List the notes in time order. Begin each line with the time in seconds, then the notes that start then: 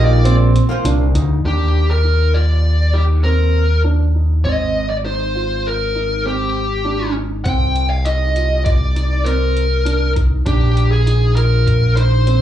Already playing: A#1 A#2 A#3 D#4 F4 G4
0.04 D5
0.25 C4, closed hi-hat
0.56 closed hi-hat
0.69 A#2 A#3 F4 C5
0.84 C2 D4, closed hi-hat
1.14 D2 D#4, closed hi-hat
1.44 D#2 D4 G4
1.91 A#4
2.04 D#4
2.34 F4 D5
2.94 D#4 G4
3.24 C4 A#4
3.84 D4
4.15 D#4
4.45 G#1 C4 D#5
4.90 D5
5.05 D#4 C5
5.35 F4
5.67 A#4
5.95 D#4
6.25 C4 G4
6.85 D4
7.15 D#4
7.45 C2 C4 G5, kick, closed hi-hat
7.76 closed hi-hat
7.90 F5
8.05 D#4 D#5, closed hi-hat
8.35 F4, closed hi-hat
8.65 D5, kick, closed hi-hat
8.95 D#4, closed hi-hat
9.24 C4 A#4, closed hi-hat
9.57 closed hi-hat
9.85 D4, closed hi-hat
10.16 D#4, kick, closed hi-hat
10.46 A#1 D4 G4, kick, closed hi-hat
10.77 closed hi-hat
10.91 G#4
11.06 D#4, closed hi-hat
11.36 F4 A#4, closed hi-hat
11.67 kick, closed hi-hat
11.95 D#4 C5, closed hi-hat
12.27 C4, closed hi-hat